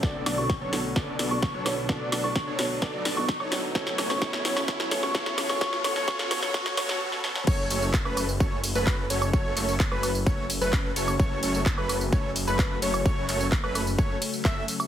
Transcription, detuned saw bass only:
\new Staff \with { instrumentName = "Detuned saw bass" } { \clef bass \time 4/4 \key fis \minor \tempo 4 = 129 b,,8 b,,8. b,,8. b,,8 b,,8. b,,8. | b,,8 b,,8. b,,8. b,,8 b,,8. b,,8. | a,,8 a,,8 a,,8 a,,8 a,,8 a,,8 a,,8 a,,8 | a,,8 a,,8 a,,8 a,,8 a,,8 a,,8 r4 |
fis,,8 fis,,8. fis,,8. fis,,8. fis,,8. fis,,8 | fis,,8 fis,,8. fis,,8. fis,,8. fis,,8. fis,,8 | fis,,8 fis,,8. fis,,8. fis,,8. fis,,8. fis,,8 | fis,,8 fis,,8. fis,,8. fis,,16 r8. fis,,16 r8. | }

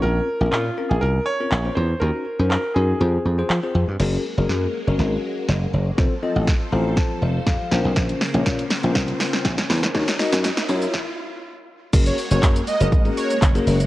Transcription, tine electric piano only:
\new Staff \with { instrumentName = "Tine electric piano" } { \time 4/4 \key ges \lydian \tempo 4 = 121 << { r1 | r1 | r1 | r4. bes''8 a''8 f''8 f''4 |
r1 | r1 | r1 | } \\ { <c' des' f' bes'>8 r16 <c' des' f' bes'>8 r16 <c' des' f' bes'>8. r8 <c' des' f' bes'>16 r16 <c' des' f' c''>8 r16 | <des' ees' ges' bes'>8 r16 <des' ees' ges' c''>8 r16 <des' ees' ges' bes'>8 <c' f' aes' c''>8 r16 <c' f' aes' c''>16 r16 <c' f' aes' c''>8 r16 | <des' ges' aes' bes'>8 r16 <des' ges' aes' bes'>8 r8 <des' ges' aes' bes'>4~ <des' ges' aes' bes'>16 r4 | <c' f' a' c''>16 r16 <c' f' a' ees''>8 r8 <c' f' a' c''>4~ <c' f' a' c''>16 r8. <des' f' bes' c''>8~ |
<des' f' bes' c''>8 r16 <des' f' bes' des''>8 r8 <des' f' bes' c''>4~ <des' f' bes' c''>16 r4 | <ees' ges' bes' des''>16 r16 <ees' ges' bes' ees''>8 r8 <ees' ges' bes' des''>8 r2 | <bes des' ges' aes' bes'>8 r16 <bes des' ges' aes' bes'>8 r8 <bes des' ges' aes' bes'>16 r16 <bes des' ges' aes' bes'>8 r8 <bes des' ges' aes' bes'>8 r16 | } >> }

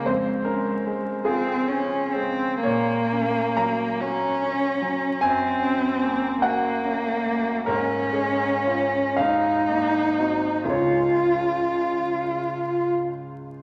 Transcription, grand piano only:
<<
  \new Staff \with { instrumentName = "Grand piano" } { \time 6/8 \key des \major \tempo 4. = 44 c''8 bes'4 aes'4. | des''4 bes''2 | aes''4. ges''4. | bes'8 aes'4 f''4 ees''8 |
des''4. r4. | }
  \new Staff \with { instrumentName = "Grand piano" } { \time 6/8 \key des \major f,8 des'8 aes8 f'8 des'8 aes8 | bes,8 des'8 ges8 ges'8 des'8 ges8 | ges,8 des'8 bes8 ges'8 des'8 bes8 | aes,8 aes8 <des' f'>8 aes,8 bes8 <c' ges'>8 |
<des, aes des' f'>2. | }
>>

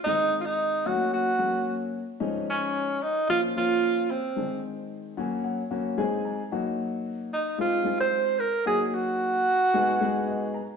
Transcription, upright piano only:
\new Staff \with { instrumentName = "Upright piano" } { \time 4/4 \key ees \dorian \tempo 4 = 112 << { r1 | r1 | r4. aes''8 ges''8 ges''8 aes''8 bes''8 | r1 |
r2. ees''8 bes''8 | } \\ { <ees aes c' ees'>4. <ges a bes des' ges'>4 <ges aes bes des' ges'>4 r8 | <f aes des' ees'>4. r8 <f bes des' f'>8 <f bes des' f'>4 r8 | <ees aes c' d' ees'>4. <ges bes des' ges'>4 <ges bes des' ges'>8 <aes c' ees' aes'>4 | <ges bes ees' ges'>4. r8 <aes c' ees' f'>8 <aes c' ees' f'>4 r8 |
<ges bes ees' ges'>4. r8 <aes ces' ees' aes'>8 <aes ces' ees' aes'>4 r8 | } >> }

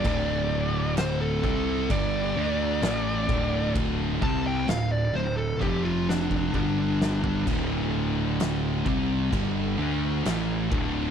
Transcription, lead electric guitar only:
\new Staff \with { instrumentName = "Lead electric guitar" } { \time 4/4 \key d \minor \tempo 4 = 65 d''4 c''16 a'8. d''2 | r8 a''16 g''16 f''16 d''16 c''16 a'16 g'16 f'16 d'8 d'4 | r1 | }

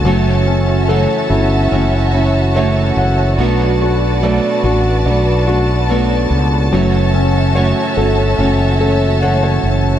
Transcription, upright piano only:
\new Staff \with { instrumentName = "Upright piano" } { \time 4/4 \key fis \phrygian \tempo 4 = 72 << { r2. e''8 fis''8 | r1 | r2. fis''16 cis''8. | } \\ { fis8 cis'8 a'8 e'8 cis'8 e'8 cis''4 | b8 fis'8 d''8 fis'8 d''8 fis'8 b4 | fis8 cis'8 cis''8 a'8 cis'8 a'8 cis''4 | } >> }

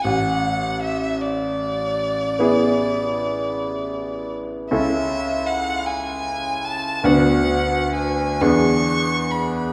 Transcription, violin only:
\new Staff \with { instrumentName = "Violin" } { \time 12/8 \key e \mixolydian \tempo 4. = 51 fis''4 e''8 d''1 r8 | e''4 fis''8 gis''4 a''8 fis''4 gis''8 cis'''4 b''8 | }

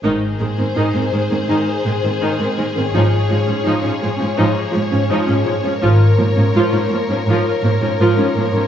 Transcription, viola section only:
\new Staff \with { instrumentName = "Viola section" } { \clef bass \time 4/4 \key aes \major \tempo 4 = 83 <ees ees'>16 r16 <ees aes>16 <ees c'>16 <ees ees'>16 <ees c'>16 <ees aes>16 <ees c'>16 <ees ees'>16 r16 <ees aes>16 <ees c'>16 <ees ees'>16 <ees c'>16 <ees aes>16 <ees c'>16 | <f ees'>16 r16 <f aes>16 <f des'>16 <f ees'>16 <f des'>16 <f aes>16 <f des'>16 <f ees'>16 r16 <f aes>16 <f des'>16 <f ees'>16 <f des'>16 <f aes>16 <f des'>16 | <f f'>16 r16 <f bes>16 <f des'>16 <f f'>16 <f des'>16 <f bes>16 <f des'>16 <f f'>16 r16 <f bes>16 <f des'>16 <f f'>16 <f des'>16 <f bes>16 <f des'>16 | }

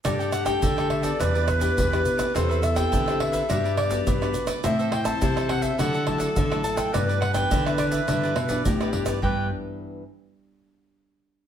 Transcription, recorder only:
\new Staff \with { instrumentName = "Recorder" } { \time 4/4 \key g \major \tempo 4 = 105 g'4 a'4 b'2 | a'2 g'4. r8 | c''2 a'2 | b'2. g'4 |
b'8 r2. r8 | }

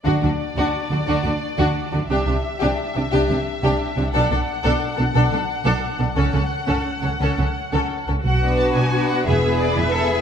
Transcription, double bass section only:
\new Staff \with { instrumentName = "Double bass section" } { \clef bass \time 6/8 \key d \lydian \tempo 4. = 117 d,8 d,8 r8 d,8 r8 d,8 | d,8 d,8 r8 d,8 r8 d,8 | c,8 c,8 r8 c,8 r8 c,8 | c,8 c,8 r8 c,8 r8 c,8 |
b,,8 b,,8 r8 b,,8 r8 b,,8 | b,,8 b,,8 r8 b,,8 r8 b,,8 | cis,8 cis,8 r8 cis,8 r8 cis,8 | cis,8 cis,8 r8 cis,8 r8 cis,8 |
b,,4. b,,4. | e,,4. e,,4. | }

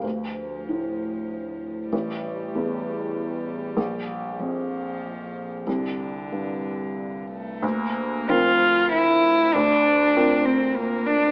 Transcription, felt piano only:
\new Staff \with { instrumentName = "Felt piano" } { \clef bass \time 3/4 \key bes \lydian \tempo 4 = 96 d,4 a,2 | a,,4 e,2 | bes,,4 f,2 | c,4 g,2 |
d,4 <f c' bes'>2 | d,4 <c' f' bes'>2 | }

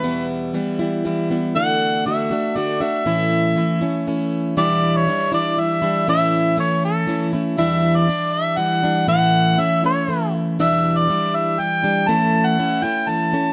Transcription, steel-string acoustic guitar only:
\new Staff \with { instrumentName = "Steel-string acoustic guitar" } { \time 3/4 \key e \dorian \tempo 4 = 120 <e, b, e g b e'>4 <e g b e'>8 <e g b e'>8 <e g b e'>8 <e g b e'>8 | <d a d' fis'>4 <d a d' fis'>8 <a d' fis'>8 <d a d' fis'>8 <a d' fis'>8 | <a, e a cis' e'>4 <e a cis' e'>8 <a cis' e'>8 <e a cis' e'>4 | <e, b, e g d' e'>4 <e g d' e'>8 <e g d' e'>8 <e g d' e'>8 <e g d' e'>8 |
<a, e a cis' e'>4 <e a cis' e'>4 <e a cis' e'>8 <a cis' e'>8 | <e, b, e g d' e'>4 <e g d' e'>4 <e g d' e'>8 <e g d' e'>8 | <a, e a cis' e'>4 <e a cis' e'>8 <a cis' e'>8 <e a cis' e'>4 | <e, b, e g d' e'>4 <e g d' e'>4 <e g d' e'>8 <e g d' e'>8 |
<a, e a cis' e'>4 <e a cis' e'>8 <a cis' e'>8 <e a cis' e'>8 <a cis' e'>8 | }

